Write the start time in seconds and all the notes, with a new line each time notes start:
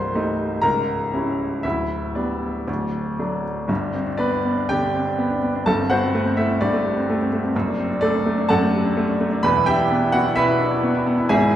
Already playing: C1 C2 C5 C6
0.14 G3 A3 D#4
0.62 C#1 C#2 A#4 A#5
1.13 G3 C#4 E4
1.63 D1 D2 E4 E5
2.15 G3 B3 D4 D5
2.67 D1 D2
3.19 F#3 A3 D4
3.68 G1 G2
3.81 D4
3.94 C4
4.06 D4
4.18 B3 D4 B4 D5
4.32 D4
4.45 B3
4.57 D4
4.69 D3 G4 D5 G5
4.83 D4
4.94 C4
5.07 D4
5.18 B3
5.30 D4
5.43 B3
5.55 D4
5.66 G1 G2 A4 A5
5.79 C4
5.90 B3 F#4 C5 F#5
6.03 C4
6.15 A3
6.26 C4
6.37 A3 E4 E5
6.50 C4
6.61 G2 D4 D5
6.73 A3
6.86 G3
6.97 C4
7.10 A3
7.21 C4
7.33 A3
7.44 C4
7.55 F#1 F#2
7.67 D4
7.79 C4
7.90 D4
8.01 A3 D4 A4 D5
8.14 D4
8.26 A3
8.38 D4
8.49 F#2 A4 F#5 A5
8.62 A3
8.74 G3
8.86 D4
8.97 A3
9.09 D4
9.20 A3
9.32 D4
9.43 E1 E2 B4 B5
9.56 E4
9.66 D4 G4 E5 G5
9.79 E4
9.92 B3
10.03 E4
10.12 B3 F#4 F#5
10.25 E4
10.36 B2 E4 B4 E5
10.48 E4
10.59 D4
10.71 E4
10.83 B3
10.95 E4
11.06 B3
11.18 E4
11.29 G#1 G#2 G#4 E5 G#5
11.42 E4